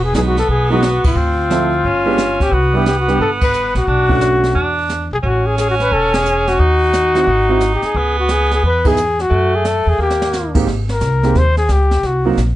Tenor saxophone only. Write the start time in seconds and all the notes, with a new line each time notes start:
Already playing: B3
1.16 C4
1.86 C#4
2.52 B3
3.88 D4
4.55 D4
5.23 C#4
6.59 D#4
7.22 D4
7.28 D#4
7.97 B3
9.30 A3
9.99 A#3